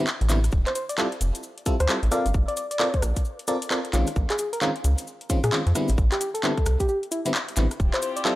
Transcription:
0.07 clap, cabasa
0.21 A1, closed hi-hat
0.29 D3 G3 B3 C4 E4, clap, closed hi-hat, cabasa
0.44 cross-stick, closed hi-hat, cabasa
0.51 D1, kick, cabasa
0.67 C5, clap, closed hi-hat
0.75 C5, closed hi-hat, cabasa
0.89 D5, closed hi-hat, cabasa
0.98 G3 C4 E4 F4 A4 D5, clap, cabasa
1.12 closed hi-hat
1.21 F1, closed hi-hat, cabasa
1.35 closed hi-hat, cabasa
1.43 cabasa
1.58 closed hi-hat
1.66 G3 C4 E4 F4 A4, kick, closed hi-hat, cabasa
1.80 D2 C5, cross-stick, closed hi-hat, cabasa
1.89 G3 C4 E4 F4 A4, clap, cabasa
2.03 A1, closed hi-hat
2.11 C4 F4 A4 A#4 D5 F5, cross-stick, closed hi-hat, cabasa
2.26 G1, closed hi-hat, cabasa
2.34 G1, kick, cabasa
2.48 D5, closed hi-hat
2.57 D5, closed hi-hat, cabasa
2.71 D5, closed hi-hat, cabasa
2.80 C4 F4 A4 A#4 D5, clap, cabasa
2.94 kick, closed hi-hat
3.02 A#1, cross-stick, closed hi-hat, cabasa
3.16 kick, closed hi-hat, cabasa
3.25 cabasa
3.39 closed hi-hat
3.47 C4 F4 A4 A#4 D5, closed hi-hat, cabasa
3.62 closed hi-hat, cabasa
3.71 C4 F4 A4 A#4 D5, clap, cabasa
3.85 closed hi-hat
3.93 A#1 D#3 G#3 C4 C#4 F4, clap, closed hi-hat, cabasa
4.07 cross-stick, closed hi-hat, cabasa
4.16 A#1, kick, cabasa
4.30 G#4, clap, closed hi-hat
4.38 G#4, closed hi-hat, cabasa
4.53 A#4, closed hi-hat, cabasa
4.61 D#3 G#3 C4 C#4 F4 A#4, clap, cabasa
4.76 closed hi-hat
4.84 C#2, closed hi-hat, cabasa
4.98 closed hi-hat, cabasa
5.07 cabasa
5.21 closed hi-hat
5.30 D#3 G#3 C4 C#4 F4, kick, closed hi-hat, cabasa
5.44 A#2 G#4, cross-stick, closed hi-hat, cabasa
5.52 D#3 G#3 C4 C#4 F4, clap, cabasa
5.66 F2, closed hi-hat
5.75 D3 G3 B3 C4 E4, cross-stick, closed hi-hat, cabasa
5.88 A1, closed hi-hat, cabasa
5.98 A1, kick, cabasa
6.12 G4, clap, closed hi-hat
6.20 G4, closed hi-hat, cabasa
6.34 A4, closed hi-hat, cabasa
6.43 D3 G3 B3 C4 E4, clap, cabasa
6.58 kick, closed hi-hat
6.66 C2, cross-stick, closed hi-hat, cabasa
6.80 G4, kick, closed hi-hat, cabasa
6.89 G4, cabasa
7.03 closed hi-hat
7.11 E4, closed hi-hat, cabasa
7.25 D3 G3 B3 C4 E4, closed hi-hat, cabasa
7.34 clap, cabasa
7.48 closed hi-hat
7.56 A1 D3 G3 B3 C4 E4, clap, closed hi-hat, cabasa
7.71 cross-stick, closed hi-hat, cabasa
7.80 D1 C4 E4 F4 G4, kick, cabasa
7.94 C5, clap, closed hi-hat
8.02 C5, closed hi-hat, cabasa
8.16 D5, closed hi-hat, cabasa
8.25 G3 C4 E4 F4 A4 D5, clap, cabasa

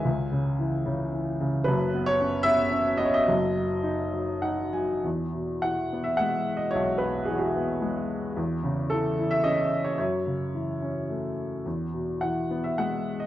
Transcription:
Already playing: G#5
0.05 C#2
0.32 C#3
0.59 E3
0.86 C#3
1.13 E3
1.41 C#3
1.64 F#1 F#2 B4
1.94 B3
2.06 C#5
2.21 C#4
2.43 B3 E5
2.72 C#4
2.97 B3 D#5
3.05 C#5
3.14 D#5
3.28 F#1 F#2
3.56 F#3
3.83 D#4
4.12 F#3
4.42 D#4 F#5
4.73 F#3 G#5
5.04 E2
5.34 B2
5.62 E3 F#5
5.93 B3
6.04 E5
6.17 G#3 F#5
6.57 D#5
6.71 C#5
6.75 B1
6.98 B4
7.02 B2
7.25 E3 G#4
7.35 F#4 G#4
7.56 B3
7.82 G#3
8.37 E2
8.63 C#3
8.90 E3 A4
9.19 E4
9.31 E5
9.44 C#4 D#5
9.84 C#5
9.98 F#2 C#5
10.26 C#3
10.54 E3
10.82 C#4
11.10 A3
11.66 E2
11.93 B2
12.21 E3 F#5
12.51 B3
12.64 E5
12.78 G#3 F#5
13.20 D#5

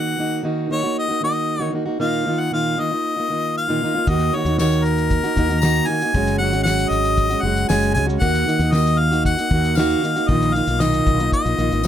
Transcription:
Already playing: D#3 A#3 D#4 F#4 F#5
0.17 D#3 A#3 D#4 F#4
0.43 D#3 A#3 D#4 F#4
0.69 D#3 A#3 D#4 F#4 C#5
0.83 A#3 D#4 F#4
0.99 D#5
1.08 A#3 D#4 F#4
1.21 D#3 A#3 D#4 F#4 D#5
1.59 D#3 A#3 D#4 F#4
1.72 D#3 A#3 D#4 F#4
1.86 A#3 D#4 F#4
1.99 A#2 D#3 A#3 D#4 F4 F5
2.25 D#3 A#3 D#4 F4
2.40 F#5
2.51 A#2 D#3 A#3 D#4 F4 F5
2.78 D#3 A#3 D#4 F4 D#5
2.91 A#3 D#4 F4
3.16 A#3 D#4 F4
3.30 D#3 A#3 D#4 F4
3.57 F5
3.68 A#2 D#3 A#3 D#4 F4
3.82 D#3 A#3 D#4 F4
3.95 A#3 D#4 F4
4.07 D#2 D#3 A#3 D#4 F#4 D#5, kick, shaker
4.20 snare, shaker
4.34 D#3 A#3 D#4 F#4 C#5
4.45 D#2 D#4 F#4, shaker
4.49 A#3
4.58 D#3 A#3 D#4 F#4 C#5, snare, tambourine, shaker
4.72 shaker
4.85 A#4, shaker
4.98 shaker
5.11 kick, shaker
5.24 A#3 D#4 F#4, shaker
5.36 D#2 D#3 A#3 D#4 F#4, kick, shaker
5.49 A#3 D#4 F#4, shaker
5.61 D#3 A#3 D#4 F#4 A#5, snare, tambourine, shaker
5.76 shaker
5.87 D#3 A#3 D#4 G#5
5.92 F#4
6.02 A#3 D#4 F#4, shaker
6.14 F#1 F#3 G#3 C#4 F#4, kick, shaker
6.27 snare, shaker
6.38 F#3 G#3 F#5
6.42 C#4 F#4
6.52 G#1 G#3 C#4 F#4, shaker
6.63 F#3 G#3 C#4 F#5, snare, tambourine, shaker
6.68 F#4
6.79 shaker
6.89 G#1 D#5, shaker
7.05 shaker
7.18 kick, shaker
7.30 G#3 C#4 F#4, shaker
7.42 F#1 F#3 G#3 F#5
7.46 C#4 F#4
7.57 shaker
7.68 F#1 F#3 G#3 C#4 F#4 G#5, snare, tambourine, shaker
7.83 shaker
7.94 C#2 F#3 G#3 C#4 G#5, shaker
7.98 F#4
8.07 C#4 F#4, shaker
8.11 G#3
8.20 D#2 D#3 A#3 D#4 F#4 F#5, kick, shaker
8.35 snare, shaker
8.46 D#3 A#3 D#4 F#4, shaker
8.59 D#2 D#4 F#4, shaker
8.64 A#3
8.72 D#3 A#3 D#4 F#4 D#5, snare, tambourine, shaker
8.86 shaker
8.98 F5
9.11 A#3 D#4 F#4, shaker
9.25 F#5, kick, shaker
9.37 A#3 D#4 F#4, shaker
9.51 D#2 D#3 A#3 D#4 F#4, kick
9.64 shaker
9.75 D#3 A#3 D#4 F5, snare, tambourine, shaker
9.79 F#4
9.91 shaker
10.03 D#3 A#3 D#4 F#4, shaker
10.16 A#3 D#4 F#4, shaker
10.28 A#1 A#2 D#3 A#3 D#4 F4 D#5, kick, shaker
10.42 snare, shaker
10.54 D#3 A#3 D#4 F4 F5, shaker
10.67 B1 A#3 D#4 F4, shaker
10.80 A#2 D#3 A#3 D#4 F4 D#5, snare, tambourine, shaker
10.93 shaker
11.07 B1, kick, shaker
11.19 A#3 D#4 F4, shaker
11.32 D#5, kick, shaker
11.45 A#1 A#3 D#4 F4, shaker
11.58 A#1 D#3 A#3 D#4 F4, shaker
11.71 G#1 A#3 D#4 F4, shaker
11.83 A#1 A#2 D#3, tambourine

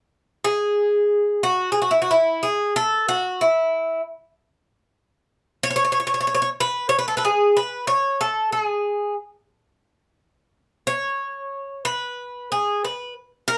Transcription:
0.44 G#4
1.43 F#4
1.72 G#4
1.82 F#4
1.91 E4
2.02 F#4
2.11 E4
2.43 G#4
2.76 A4
3.09 F#4
3.41 E4
5.63 C#5
5.70 C#5
5.76 C#5
5.85 C#5
5.92 C#5
6.00 C#5
6.07 C#5
6.14 C#5
6.21 C#5
6.27 C#5
6.35 C#5
6.42 C#5
6.60 B4
6.89 C#5
6.99 B4
7.08 A4
7.17 A4 B4
7.25 G#4
7.57 B4
7.87 C#5
8.21 A4
8.52 G#4
10.87 C#5
11.85 B4
12.52 G#4
12.85 B4
13.48 A#4

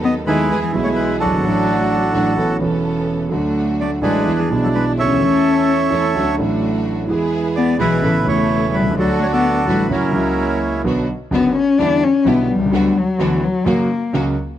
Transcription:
Already playing: D#2 D#3 F#3 B3 D#4 A4
0.04 B3 D#5
0.26 D#2 D#3 F#3 G#3 B3 D#4 E4 G#4 A4 B4
0.50 E2 E3 G#3 B3 E4 G#4
0.61 E3 G#4
0.72 B1 B2 E3 G#3 B3 E4 G#4
0.84 A3 C#5
0.95 G#3 B4
1.20 F#3 D4 F#4 A4
1.25 F#1
1.31 G1
1.37 G#1
1.43 A1 A2 F#3 A3 D4 F#4 A4
2.12 A1 A2 F#3 A3 D4 F#4 A4
2.36 A1 A2 E3 B3 C#4 A4
2.59 E1 E2 E3 B3 C#4 A4
2.63 A4
3.29 D2 D3 F#3 A3 D4 F#4
3.33 A4
3.81 A3 D5
4.01 A1 A2 F#3 G#3 A3 D4 F#4 G#4 A4 B4
4.25 E2 E3 G#3 B3 D4 E4 G#4
4.39 E3 G#4
4.49 B1 B2 E3 G#3 B3 D4 E4 G#4
4.63 F#3 A4
4.74 G#3 B4
4.98 C#4 A4 C#5 E5
5.03 C#2
5.08 D2
5.14 D#2
5.20 E2 E3 A3 C#4 E4 A4
5.90 E2 E3 A3 C#4 E4 A4
6.15 D2 D3 F#3 A3 D4 F#4 A4
6.36 A1 A2 F#3 A3 D4 F#4
6.40 A4
7.08 E2 E3 G#3 B3 E4 G#4
7.56 B3 D5
7.78 B1 B2 E3 G#3 B3 E4 G#4 B4
8.02 A1 A2 C#3 A3 B3 C#4 E4 A4
8.23 E1 E2 C#3 A3 B3 C#4 A4
8.27 E4 C#5
8.72 G3 B4
8.79 B1
8.84 C2
8.90 C#2
8.95 D2 D3 F#3 A3 D4 F#4
9.00 A4
9.19 A3 C#5
9.30 B3 F#4 A4 D5
9.65 A1 A2 D3 F#3 G3 A3 D4 F#4
9.69 B4
9.89 F#2 C#3 F#3 A#3 C#4 E4 F#4 A#4
10.12 C#2 C#3 F#3 A#3 E4 F#4
10.84 B1 B2 D3 F#3 B3 D4 F#4
11.31 F#1 F#2 D3 F#3 B3 D4 F#4
11.57 C#4
11.78 E2 D3 E3 G3 B3 D4 E4 G4
12.04 C#4
12.25 B1 B2 D3 G3 B3 D4 E4 G4
12.51 B1 G3
12.59 C2
12.65 C#2
12.71 D2 D3 F#3 B3 D4 F#4
12.98 F#3
13.19 D2 D3 E3 F#3 B3 D4 F#4
13.44 F#3
13.65 F#2 C#3 F#3 A#3 C#4 F#4
14.13 C#2 C#3 F#3 A#3 C#4 F#4

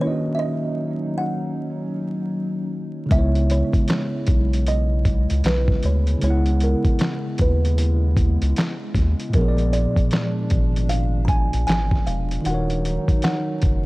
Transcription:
Already playing: D#3 A#3
0.00 F#3 C#4 D#4 E4 C#5
0.07 F#4 D#5
0.35 E5
0.39 D#5
1.18 F#5
3.06 C#3 G#3
3.11 C#2 C#3 G#3 B3 C#4 E4 E5, kick, closed hi-hat
3.15 E4 C#5
3.35 closed hi-hat
3.50 C#5, closed hi-hat
3.73 kick, closed hi-hat
3.88 snare, clap, closed hi-hat
4.27 B1, kick, closed hi-hat
4.53 closed hi-hat
4.67 D#5, closed hi-hat
5.05 kick, closed hi-hat
5.30 C#2, closed hi-hat
5.44 B1 B4, snare, clap, closed hi-hat
5.68 kick
5.72 snare
5.83 D2 C#5, closed hi-hat
6.07 closed hi-hat
6.18 C#3 G#3, closed hi-hat
6.23 C#2 B3 C#5
6.27 E4 F#5
6.46 closed hi-hat
6.60 A#4, closed hi-hat
6.85 kick, closed hi-hat
6.99 snare, clap, closed hi-hat
7.38 D#2 B4, kick, closed hi-hat
7.65 closed hi-hat
7.78 closed hi-hat
8.17 kick, closed hi-hat
8.42 C#2, closed hi-hat
8.56 snare, clap, closed hi-hat
8.94 D#2, kick, snare, closed hi-hat
9.20 closed hi-hat
9.29 A#2 F3, closed hi-hat
9.34 A#1 A#2 B3 D4 A#4, kick
9.39 G#4 C#5
9.48 D5
9.58 closed hi-hat
9.73 D5, closed hi-hat
9.96 kick, closed hi-hat
10.11 snare, clap, closed hi-hat
10.50 G#1, kick, closed hi-hat
10.76 closed hi-hat
10.89 F5, closed hi-hat
11.25 A#5, kick, closed hi-hat
11.29 G#5
11.53 A#1, closed hi-hat
11.67 G#1 G#5, snare, clap, closed hi-hat
11.91 kick
11.95 snare
12.06 E1 F5, closed hi-hat
12.31 closed hi-hat
12.41 D#3 D#4, closed hi-hat
12.46 D#1 F#3 C#4 D#4 F#4 F#5
12.51 A#4 C#5
12.70 closed hi-hat
12.85 closed hi-hat
13.08 kick, closed hi-hat
13.22 F#5, snare, clap, closed hi-hat
13.62 F#1, kick, closed hi-hat

